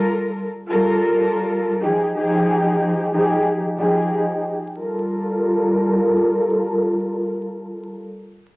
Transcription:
Already playing: G3 F4 A4 A#4
0.68 G3 F4 A4 A#4
1.81 F3 D#4 G4 G#4
2.14 F3 D#4 G4 G#4
3.11 F3 D#4 G4 G#4
3.77 F3 D#4 G4 G#4
4.78 G3 F4 A4 A#4

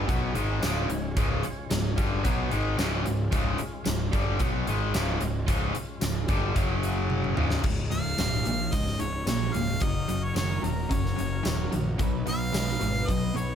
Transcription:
Already playing: G#3 C#4 F4 C#5
0.07 B1 B2 F#3 B3, kick, closed hi-hat
0.35 G#1 G#2 D#3 G#3, closed hi-hat
0.62 C#1 C#2 G#2 C#3, snare, closed hi-hat, tambourine
0.89 C#1 C#2 G#2, closed hi-hat
1.17 C#1 C#2 G#2 C#3, kick, closed hi-hat
1.43 muted overdriven electric guitar stroke, muted distorted electric guitar stroke, muted picked electric bass stroke, closed hi-hat
1.71 C#1 C#2 G#2, snare, closed hi-hat, tambourine
1.97 G1 G2 D3 G3, kick, closed hi-hat
2.25 B1 B2 F#3 B3, kick, closed hi-hat
2.51 G#1 G#2 D#3 G#3, closed hi-hat
2.78 C#1 C#2 G#2 C#3, snare, closed hi-hat, tambourine
3.05 C#1 C#2 G#2 G#3 C#4 F4, closed hi-hat
3.32 C#1 C#2 G#2 C#3, kick, closed hi-hat
3.58 muted overdriven electric guitar stroke, muted picked electric bass stroke, muted distorted electric guitar stroke, closed hi-hat
3.85 C#1 C#2 G#2, snare, closed hi-hat, tambourine
4.13 G1 G2 D3 G3, kick, closed hi-hat
4.39 B1 B2 F#3 B3, kick, closed hi-hat
4.67 G#1 G#2 D#3 G#3, closed hi-hat
4.93 C#1 C#2 G#2 C#3, snare, closed hi-hat, tambourine
5.21 C#1 C#2 G#2, closed hi-hat
5.48 C#1 C#2 G#2 C#3, kick, closed hi-hat
5.75 muted distorted electric guitar stroke, muted picked electric bass stroke, muted overdriven electric guitar stroke, closed hi-hat
6.01 C#1 C#2 G#2, snare, closed hi-hat, tambourine
6.28 G1 G2 D3 G3, kick, closed hi-hat
6.54 F#1 F#2 C#3 F#3 C#4 F#4 C#5, kick, closed hi-hat
6.83 closed hi-hat
7.10 high tom
7.24 mid tom
7.36 C#1 C#2 G#2 C#3, mid tom
7.50 snare
7.63 C#1 C#2 G#2 C#3 G#3 C#4 D#4 G#4, kick, crash
7.90 C#1 C#2 G#2 G#3 C#4 D#4 G#4 F5, closed hi-hat
8.18 C#1 C#2 A#2 C#3 G#3 C#4 D#4 G#4, snare, closed hi-hat, tambourine
8.31 C#4 D#4 G#4, snare
8.44 A#1 C#2 A#2 G#3 C#4 D#4, closed hi-hat
8.48 G#4
8.58 C#4 D#4 G#4
8.72 C#1 C#2 G#2 D#5, kick, closed hi-hat
8.84 C#4 D#4 G#4, snare
8.99 C#1 C#2 G#2 G#3 C#4 D#4 G#4 C#5, closed hi-hat
9.12 C#4 D#4 G#4
9.25 A#1 C#2 A#2 C#3 G#3 C#4 D#4 G#4 C#5, snare, closed hi-hat, tambourine
9.54 C#1 C#2 A#2 G#3 C#4 D#4 G#4 F5, closed hi-hat
9.80 F#1 F#2 C#3 F#3 C#4 F#4 A#4 D#5, kick, closed hi-hat
10.07 F#1 F#2 C#3 F#3 C#4 F#4 A#4, closed hi-hat
10.24 C#5
10.35 F#1 F#2 D#3 F#3 C#4 F#4 C#5, snare, closed hi-hat, tambourine
10.39 A#4
10.50 C#4 F#4 A#4
10.63 D#1 F#2 D#3 F#3 C#4 A#4, closed hi-hat
10.67 F#4 A#4
10.77 C#4 F#4 A#4
10.90 F#1 F#2 C#3 C#5, kick, closed hi-hat
11.05 C#4 F#4 A#4, snare
11.16 F#1 F#2 C#3 F#3 C#4, closed hi-hat
11.21 F#4 A#4
11.32 C#4 F#4 A#4
11.43 D#1 F#2 D#3 F#3, snare, closed hi-hat, tambourine
11.47 C#4 F#4 A#4
11.72 A#1 F#2 D#3 F#3 C#4, closed hi-hat
11.76 F#4 A#4
11.99 B1 B2 D#3 F#3 B3 D#4 B4, kick, closed hi-hat
12.26 B1 B2 F#3 B3 D#4 F5, closed hi-hat
12.30 B4
12.53 B1 B2 D#3 F#3 G#3 B3 D#4 B4, snare, closed hi-hat, tambourine
12.67 F#3 B3 D#4 B4, snare
12.80 G#1 B2 F#3 G#3 B3 D#4 B4, closed hi-hat
12.93 F#3 B3 D#4 B4
13.08 B1 B2 F#3 D#5, kick, closed hi-hat
13.21 F#3 B3 D#4 B4
13.34 B1 B2 F#3 B3 D#4 C#5, closed hi-hat
13.39 B4
13.48 F#3 B3 D#4 B4

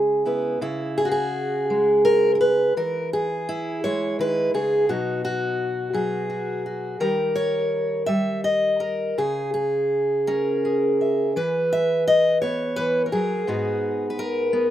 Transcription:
Already playing: C#3 G#3 G#4
0.26 B3 E4 B4
0.61 C#3 E4
0.98 G#4
1.05 F#4
1.11 G#4
1.70 G#3
2.05 A#4
2.35 A#4
2.41 B4
2.77 E3 A#4
3.13 G#4
3.49 E4
3.84 G#3 C#5
4.19 D#3 B4
4.54 C#3 G#4
4.89 B2 F#3 D#4 F#4
5.25 F#4
5.93 F#3 G#4
6.30 F#4
6.66 F#4
7.00 D#3 G3 G4 A#4
7.36 C#5
8.06 G3 E5
8.44 D#5
8.80 A#4
9.18 C#3 G#4
9.54 G#4
10.27 C#4 A#4
10.65 G#4
11.01 E5
11.36 E3 B4
11.73 E5
12.07 D#5
12.42 B3 C#5
12.76 E3 B4
13.06 A#4
13.12 F#3 G#4
13.47 G#2 B3 D#4 F#4
14.10 B4
14.19 A#4
14.53 B3

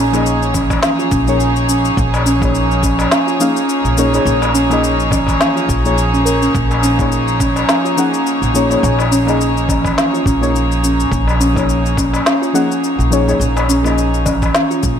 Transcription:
Already playing: A#1 F3 A#3 D#4 G#4 C#5
0.12 F3 A#3 D#4 G#4 D#5, darbuka ka, shaker
0.26 shaker
0.42 shaker
0.54 C#4, kick, darbuka ka, darbuka tek, darbuka dum, shaker
0.70 kick, darbuka tek, shaker
0.83 C#4, snare, shaker
0.99 F4, shaker
1.12 A#1 C#4, kick, shaker
1.27 F3 A#3 D#4 G#4 C#5, shaker
1.40 shaker
1.56 shaker
1.69 C#4, shaker
1.85 shaker
1.97 A#1 A#3, kick, shaker
2.14 darbuka tek, shaker
2.26 C#4, shaker
2.40 F3 A#3 D#4 G#4, kick, darbuka ka, shaker
2.44 C#5
2.55 shaker
2.71 shaker
2.83 C#4, kick, darbuka tek, shaker
2.99 darbuka tek, shaker
3.11 C#4, snare, shaker
3.27 F4, shaker
3.40 F3 A#3 C#4 D#4 G#4 F5, shaker
3.57 shaker
3.69 shaker
3.84 A#1, shaker
3.97 F3 A#3 C#4 D#4 G#4 C#5, shaker
4.13 F3 A#3 D#4 G#4 C#5, darbuka tek, shaker
4.25 A#1 A#3, shaker
4.42 darbuka tek, shaker
4.54 C#4, shaker
4.69 F3 A#3 D#4 G#4, darbuka ka, shaker
4.73 D#5
4.84 shaker
5.00 shaker
5.10 C#4, kick, darbuka ka, darbuka tek, darbuka dum, shaker
5.27 kick, darbuka tek, shaker
5.40 C#4, snare, shaker
5.56 F4, shaker
5.68 A#1 F4, kick, shaker
5.84 F3 A#3 D#4 G#4 C#5, shaker
5.98 shaker
6.13 C#4, shaker
6.25 A#4, shaker
6.42 C#4, shaker
6.54 A#1 A#3, kick, shaker
6.71 darbuka tek, shaker
6.83 C#4, shaker
6.97 F3 A#3 D#4 G#4 C#5, kick, darbuka ka, shaker
7.12 shaker
7.28 shaker
7.40 C#4, kick, darbuka tek, shaker
7.56 darbuka tek, shaker
7.69 C#4, snare, shaker
7.85 F4, shaker
7.97 F3 A#3 C#4 D#4 G#4 F#5, shaker
8.14 shaker
8.27 shaker
8.42 A#1, shaker
8.53 F3 A#3 C#4 D#4 G#4 C#5, shaker
8.69 F3 A#3 D#4 G#4 C#5, darbuka tek, shaker
8.83 A#1 A#3, shaker
8.99 darbuka tek, shaker
9.11 C#4, shaker
9.25 F3 A#3 D#4 G#4 D#5, darbuka ka, shaker
9.41 shaker
9.57 shaker
9.69 C#4, kick, darbuka ka, darbuka tek, darbuka dum, shaker
9.85 kick, darbuka tek, shaker
9.97 C#4, snare, shaker
10.13 F4, shaker
10.26 A#1 C#4, kick, shaker
10.41 F3 A#3 D#4 G#4 C#5, shaker
10.56 shaker
10.72 shaker
10.84 C#4, shaker
11.00 shaker
11.12 A#1 A#3, kick, shaker
11.28 darbuka tek, shaker
11.40 C#4, shaker
11.54 F3 A#3 D#4 G#4, kick, darbuka ka, shaker
11.58 C#5
11.69 shaker
11.86 shaker
11.97 C#4, kick, darbuka tek, shaker
12.14 darbuka tek, shaker
12.26 C#4, snare, shaker
12.42 F4, shaker
12.53 F3 A#3 C#4 D#4 G#4 F#5, shaker
12.72 shaker
12.84 shaker
12.99 A#1, shaker
13.10 F3 A#3 C#4 D#4 G#4 C#5, shaker
13.27 F3 A#3 D#4 G#4 C#5, darbuka tek, shaker
13.40 A#1 A#3, shaker
13.57 darbuka tek, shaker
13.69 C#4, shaker
13.83 F3 A#3 D#4 G#4 D#5, darbuka ka, shaker
13.98 shaker
14.14 shaker
14.26 C#4, kick, darbuka ka, darbuka tek, darbuka dum, shaker
14.42 kick, darbuka tek, shaker
14.55 C#4, snare, shaker
14.71 F4, shaker
14.83 A#1 A#3, kick, shaker

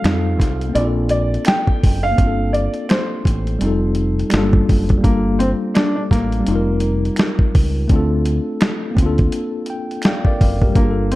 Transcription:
Already playing: F5
0.02 F2 G3 C4, finger snap, snare, closed hi-hat
0.07 D#4 F4 A4
0.40 C2, kick, snare, closed hi-hat
0.61 closed hi-hat
0.69 A#3 C4
0.75 A#1 D4 D5, closed hi-hat
0.81 F4 A4
1.09 D5, closed hi-hat
1.34 closed hi-hat
1.45 G5, finger snap, snare, closed hi-hat
1.67 kick
1.83 F#1, kick, open hi-hat
2.03 F5
2.12 A#3
2.16 G1 C4 D4, kick, closed hi-hat
2.23 F4 A4
2.53 D5, closed hi-hat
2.74 closed hi-hat
2.89 C5, finger snap, snare, closed hi-hat
3.25 A1, kick, closed hi-hat
3.47 closed hi-hat
3.59 F1 G3 C4, closed hi-hat
3.63 D#4 F4 A4
3.95 closed hi-hat
4.19 closed hi-hat
4.30 G1 G3 A3 D4, finger snap, snare, closed hi-hat
4.35 A#3 F4 A4
4.53 kick
4.69 F#1, kick, open hi-hat
4.89 kick, closed hi-hat
4.98 G3 A#3
5.04 G1 A#3 D4, kick, closed hi-hat
5.09 F4 A4
5.39 C4, closed hi-hat
5.74 D4, finger snap, snare, closed hi-hat
5.96 D4
6.11 A1 A#3, kick, snare, closed hi-hat
6.32 closed hi-hat
6.40 G3 C4
6.47 F1 D#4, closed hi-hat
6.52 F4 A#4
6.80 closed hi-hat
7.05 closed hi-hat
7.16 finger snap, snare, closed hi-hat
7.39 kick
7.55 C#2, kick, open hi-hat
7.88 D2 A3 C4 D4, kick, closed hi-hat
7.93 F4 A4
8.25 closed hi-hat
8.61 finger snap, snare, closed hi-hat
8.91 A#3 C4
8.97 D2 C#4, kick, closed hi-hat
9.03 D4 F4 A4
9.18 kick, closed hi-hat
9.32 closed hi-hat
9.66 G5, closed hi-hat
9.91 closed hi-hat
10.02 F5 G5, finger snap, snare, closed hi-hat
10.06 D5
10.25 A#4 D5 F5, kick
10.41 F#1 F5, kick, open hi-hat
10.62 G4 A#4, kick
10.69 G3 A#3
10.75 G1 A#3 D4, kick, closed hi-hat
10.80 F4
10.84 G#4
10.91 A4
11.12 C4, closed hi-hat

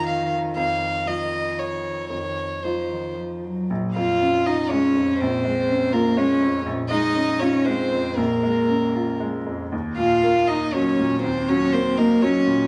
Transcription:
Already playing: F2 D#3 F3 D#4 F4
0.06 F5
0.56 F2 F5
1.06 F3 D#4 F4 D#5
1.59 C#5
2.10 F2 D#3 C#5
2.64 F3 D#4 F4 C5
2.91 D#3
3.17 F3
3.44 F#3
3.70 A#1
3.96 F2 F4 F5
4.22 C#4
4.46 D#4 F4 D#5
4.70 G#3 C#4 C#5
4.96 F2
5.19 A#1 C4 C5
5.45 G#3
5.70 C#4
5.93 A#3 F4 A#4
6.17 G#3 C#4 C#5
6.42 F2
6.66 A#1
6.89 G#3 D#4 D#5
7.16 C#4
7.39 C#4 F4 C#5
7.66 G#3 C4 C5
7.92 F2
8.16 A#1 A#3 A#4
8.43 G#3
8.69 C#4
8.95 F4
9.20 G#3
9.46 F2
9.72 D#2
9.97 A#2 F4 F5
10.23 A#3
10.47 D#4 D#5
10.73 F#3 C#4 C#5
11.00 A#2
11.22 D#2 C4 C5
11.49 F#3 C#4 C#5
11.73 A#3 C4 C5
11.97 A#3 D#4 A#4
12.22 F#3 C#4 C#5
12.46 A#2

